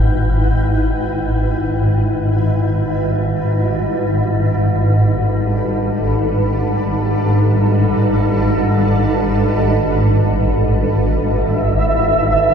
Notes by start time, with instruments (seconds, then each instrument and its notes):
Already playing: synth drone G#1 G#2, ambient pad E4 B4 F#5 G5
1.80 ambient pad G3
2.39 ambient pad D4
4.23 ambient pad A4
11.16 ambient pad E4, synth texture E5